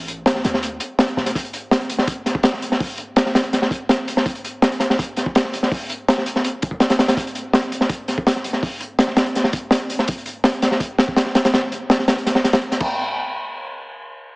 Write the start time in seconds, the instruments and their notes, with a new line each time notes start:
Already playing: 808-style bass A1
0.08 closed hi-hat
0.26 snare, closed hi-hat
0.35 snare
0.44 808-style bass D2, snare, closed hi-hat
0.54 snare
0.63 closed hi-hat
0.80 closed hi-hat
0.99 snare, closed hi-hat
1.07 closed hi-hat
1.17 808-style bass E1, snare
1.26 snare, closed hi-hat
1.35 kick, closed hi-hat
1.45 closed hi-hat
1.53 closed hi-hat
1.71 snare, closed hi-hat
1.81 closed hi-hat
1.90 closed hi-hat
1.98 snare
2.08 kick, closed hi-hat
2.26 snare, closed hi-hat
2.35 kick
2.43 snare, closed hi-hat
2.54 snare
2.62 closed hi-hat
2.72 snare
2.80 kick, open hi-hat
2.98 closed hi-hat
3.16 snare, closed hi-hat
3.26 snare
3.35 snare, closed hi-hat
3.44 closed hi-hat
3.53 snare, closed hi-hat
3.62 snare
3.71 kick, closed hi-hat
3.89 snare, closed hi-hat
4.08 closed hi-hat
4.17 snare
4.26 kick, closed hi-hat
4.35 closed hi-hat
4.45 closed hi-hat
4.62 snare, closed hi-hat
4.72 closed hi-hat
4.80 snare, closed hi-hat
4.90 snare
4.99 kick, closed hi-hat
5.16 snare, closed hi-hat
5.26 kick
5.35 snare, closed hi-hat
5.44 snare
5.53 closed hi-hat
5.63 snare
5.72 kick, open hi-hat
5.90 closed hi-hat
6.08 snare, closed hi-hat
6.18 snare
6.26 closed hi-hat
6.36 snare
6.44 closed hi-hat
6.62 kick, closed hi-hat
6.71 kick
6.80 snare, closed hi-hat
6.90 snare, closed hi-hat
6.99 snare, closed hi-hat
7.08 snare, closed hi-hat
7.17 kick, closed hi-hat
7.27 closed hi-hat
7.35 closed hi-hat
7.53 snare, closed hi-hat
7.62 closed hi-hat
7.72 closed hi-hat
7.81 snare
7.90 kick, closed hi-hat
8.08 snare, closed hi-hat
8.18 kick
8.27 snare, closed hi-hat
8.36 snare
8.44 closed hi-hat
8.53 snare
8.63 kick, open hi-hat
8.80 closed hi-hat
8.99 snare, closed hi-hat
9.08 snare
9.16 snare, closed hi-hat
9.26 closed hi-hat
9.35 snare, closed hi-hat
9.44 snare
9.53 kick, closed hi-hat
9.71 snare, closed hi-hat
9.90 closed hi-hat
9.99 snare
10.08 kick, closed hi-hat
10.18 closed hi-hat
10.26 closed hi-hat
10.44 snare, closed hi-hat
10.53 closed hi-hat
10.62 snare, closed hi-hat
10.71 snare
10.80 kick, closed hi-hat
10.98 snare, closed hi-hat
11.08 kick
11.16 snare, closed hi-hat
11.26 snare
11.35 snare, closed hi-hat
11.45 snare, closed hi-hat
11.54 snare, closed hi-hat
11.72 closed hi-hat
11.90 snare, closed hi-hat
11.99 snare
12.08 snare, closed hi-hat
12.18 closed hi-hat
12.26 snare, closed hi-hat
12.35 snare
12.44 snare, closed hi-hat
12.53 snare, closed hi-hat
12.62 closed hi-hat
12.72 snare, closed hi-hat
12.80 kick, crash